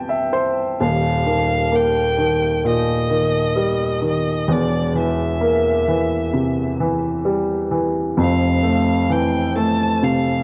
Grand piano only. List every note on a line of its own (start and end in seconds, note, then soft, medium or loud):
0.00 0.76 C2 medium
0.00 0.81 C3 medium
0.00 0.29 E3 medium
0.00 0.81 G5 medium
0.00 0.81 A5 medium
0.09 0.31 E5 medium
0.33 0.76 C5 medium
0.80 4.45 D#1 medium
0.80 4.45 D#2 medium
1.26 2.17 D#3 medium
1.72 3.52 A#3 medium
2.18 3.09 D#3 medium
2.64 4.45 A#2 soft
3.10 4.00 D#3 soft
3.56 4.46 G3 medium
4.02 4.47 D#3 medium
4.48 8.13 E1 medium
4.48 8.14 E2 medium
4.95 5.87 E3 soft
5.41 7.22 A#3 medium
5.88 6.79 E3 medium
6.33 8.14 C3 medium
6.80 7.70 E3 medium
7.25 8.15 G3 medium
7.71 8.16 E3 medium
8.17 10.43 F1 medium
8.17 10.43 F2 medium
8.63 9.54 A3 soft
9.10 10.43 E3 medium
9.56 10.43 A3 medium
10.02 10.43 C3 medium